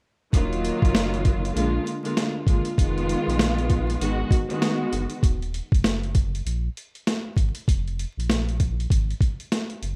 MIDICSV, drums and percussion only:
0, 0, Header, 1, 2, 480
1, 0, Start_track
1, 0, Key_signature, -6, "minor"
1, 0, Tempo, 612245
1, 259, Time_signature, 4, 2, 24, 8
1, 7808, End_track
2, 0, Start_track
2, 0, Title_t, "Drums"
2, 259, Note_on_c, 9, 36, 95
2, 265, Note_on_c, 9, 42, 94
2, 338, Note_off_c, 9, 36, 0
2, 344, Note_off_c, 9, 42, 0
2, 413, Note_on_c, 9, 42, 36
2, 492, Note_off_c, 9, 42, 0
2, 506, Note_on_c, 9, 42, 80
2, 585, Note_off_c, 9, 42, 0
2, 645, Note_on_c, 9, 36, 99
2, 665, Note_on_c, 9, 42, 55
2, 723, Note_off_c, 9, 36, 0
2, 742, Note_on_c, 9, 38, 111
2, 743, Note_off_c, 9, 42, 0
2, 755, Note_on_c, 9, 42, 98
2, 820, Note_off_c, 9, 38, 0
2, 833, Note_off_c, 9, 42, 0
2, 892, Note_on_c, 9, 42, 36
2, 970, Note_off_c, 9, 42, 0
2, 979, Note_on_c, 9, 42, 76
2, 981, Note_on_c, 9, 36, 92
2, 1057, Note_off_c, 9, 42, 0
2, 1059, Note_off_c, 9, 36, 0
2, 1137, Note_on_c, 9, 42, 54
2, 1215, Note_off_c, 9, 42, 0
2, 1228, Note_on_c, 9, 42, 102
2, 1306, Note_off_c, 9, 42, 0
2, 1467, Note_on_c, 9, 42, 68
2, 1545, Note_off_c, 9, 42, 0
2, 1608, Note_on_c, 9, 42, 50
2, 1687, Note_off_c, 9, 42, 0
2, 1702, Note_on_c, 9, 38, 105
2, 1706, Note_on_c, 9, 42, 84
2, 1780, Note_off_c, 9, 38, 0
2, 1784, Note_off_c, 9, 42, 0
2, 1934, Note_on_c, 9, 36, 90
2, 1942, Note_on_c, 9, 42, 77
2, 2012, Note_off_c, 9, 36, 0
2, 2021, Note_off_c, 9, 42, 0
2, 2077, Note_on_c, 9, 42, 57
2, 2155, Note_off_c, 9, 42, 0
2, 2179, Note_on_c, 9, 36, 95
2, 2186, Note_on_c, 9, 42, 92
2, 2258, Note_off_c, 9, 36, 0
2, 2265, Note_off_c, 9, 42, 0
2, 2333, Note_on_c, 9, 42, 35
2, 2412, Note_off_c, 9, 42, 0
2, 2425, Note_on_c, 9, 42, 81
2, 2504, Note_off_c, 9, 42, 0
2, 2583, Note_on_c, 9, 42, 56
2, 2660, Note_on_c, 9, 38, 110
2, 2662, Note_off_c, 9, 42, 0
2, 2673, Note_on_c, 9, 42, 101
2, 2739, Note_off_c, 9, 38, 0
2, 2751, Note_off_c, 9, 42, 0
2, 2811, Note_on_c, 9, 42, 35
2, 2889, Note_off_c, 9, 42, 0
2, 2898, Note_on_c, 9, 42, 74
2, 2900, Note_on_c, 9, 36, 90
2, 2977, Note_off_c, 9, 42, 0
2, 2979, Note_off_c, 9, 36, 0
2, 3056, Note_on_c, 9, 42, 54
2, 3134, Note_off_c, 9, 42, 0
2, 3148, Note_on_c, 9, 42, 105
2, 3226, Note_off_c, 9, 42, 0
2, 3376, Note_on_c, 9, 36, 96
2, 3387, Note_on_c, 9, 42, 71
2, 3455, Note_off_c, 9, 36, 0
2, 3465, Note_off_c, 9, 42, 0
2, 3528, Note_on_c, 9, 42, 50
2, 3607, Note_off_c, 9, 42, 0
2, 3621, Note_on_c, 9, 38, 107
2, 3626, Note_on_c, 9, 42, 84
2, 3700, Note_off_c, 9, 38, 0
2, 3704, Note_off_c, 9, 42, 0
2, 3862, Note_on_c, 9, 42, 78
2, 3940, Note_off_c, 9, 42, 0
2, 3995, Note_on_c, 9, 42, 60
2, 4074, Note_off_c, 9, 42, 0
2, 4099, Note_on_c, 9, 36, 94
2, 4105, Note_on_c, 9, 42, 91
2, 4177, Note_off_c, 9, 36, 0
2, 4183, Note_off_c, 9, 42, 0
2, 4253, Note_on_c, 9, 42, 35
2, 4331, Note_off_c, 9, 42, 0
2, 4345, Note_on_c, 9, 42, 82
2, 4424, Note_off_c, 9, 42, 0
2, 4485, Note_on_c, 9, 36, 103
2, 4504, Note_on_c, 9, 42, 55
2, 4563, Note_off_c, 9, 36, 0
2, 4581, Note_on_c, 9, 38, 113
2, 4583, Note_off_c, 9, 42, 0
2, 4594, Note_on_c, 9, 42, 97
2, 4659, Note_off_c, 9, 38, 0
2, 4672, Note_off_c, 9, 42, 0
2, 4731, Note_on_c, 9, 42, 36
2, 4810, Note_off_c, 9, 42, 0
2, 4819, Note_on_c, 9, 42, 77
2, 4821, Note_on_c, 9, 36, 91
2, 4898, Note_off_c, 9, 42, 0
2, 4899, Note_off_c, 9, 36, 0
2, 4978, Note_on_c, 9, 42, 54
2, 5056, Note_off_c, 9, 42, 0
2, 5069, Note_on_c, 9, 42, 103
2, 5147, Note_off_c, 9, 42, 0
2, 5309, Note_on_c, 9, 42, 69
2, 5387, Note_off_c, 9, 42, 0
2, 5450, Note_on_c, 9, 42, 49
2, 5528, Note_off_c, 9, 42, 0
2, 5544, Note_on_c, 9, 38, 109
2, 5548, Note_on_c, 9, 42, 83
2, 5623, Note_off_c, 9, 38, 0
2, 5627, Note_off_c, 9, 42, 0
2, 5775, Note_on_c, 9, 36, 86
2, 5783, Note_on_c, 9, 42, 80
2, 5853, Note_off_c, 9, 36, 0
2, 5861, Note_off_c, 9, 42, 0
2, 5917, Note_on_c, 9, 42, 60
2, 5996, Note_off_c, 9, 42, 0
2, 6020, Note_on_c, 9, 36, 91
2, 6027, Note_on_c, 9, 42, 90
2, 6098, Note_off_c, 9, 36, 0
2, 6105, Note_off_c, 9, 42, 0
2, 6175, Note_on_c, 9, 42, 35
2, 6253, Note_off_c, 9, 42, 0
2, 6267, Note_on_c, 9, 42, 81
2, 6346, Note_off_c, 9, 42, 0
2, 6426, Note_on_c, 9, 42, 55
2, 6503, Note_on_c, 9, 38, 114
2, 6505, Note_off_c, 9, 42, 0
2, 6516, Note_on_c, 9, 42, 98
2, 6582, Note_off_c, 9, 38, 0
2, 6595, Note_off_c, 9, 42, 0
2, 6653, Note_on_c, 9, 42, 35
2, 6731, Note_off_c, 9, 42, 0
2, 6741, Note_on_c, 9, 42, 76
2, 6742, Note_on_c, 9, 36, 90
2, 6819, Note_off_c, 9, 42, 0
2, 6820, Note_off_c, 9, 36, 0
2, 6899, Note_on_c, 9, 42, 55
2, 6978, Note_off_c, 9, 42, 0
2, 6980, Note_on_c, 9, 36, 96
2, 6990, Note_on_c, 9, 42, 105
2, 7058, Note_off_c, 9, 36, 0
2, 7069, Note_off_c, 9, 42, 0
2, 7139, Note_on_c, 9, 42, 35
2, 7217, Note_off_c, 9, 42, 0
2, 7217, Note_on_c, 9, 36, 94
2, 7227, Note_on_c, 9, 42, 69
2, 7296, Note_off_c, 9, 36, 0
2, 7305, Note_off_c, 9, 42, 0
2, 7369, Note_on_c, 9, 42, 49
2, 7448, Note_off_c, 9, 42, 0
2, 7463, Note_on_c, 9, 38, 102
2, 7468, Note_on_c, 9, 42, 87
2, 7542, Note_off_c, 9, 38, 0
2, 7546, Note_off_c, 9, 42, 0
2, 7603, Note_on_c, 9, 42, 36
2, 7682, Note_off_c, 9, 42, 0
2, 7703, Note_on_c, 9, 42, 77
2, 7782, Note_off_c, 9, 42, 0
2, 7808, End_track
0, 0, End_of_file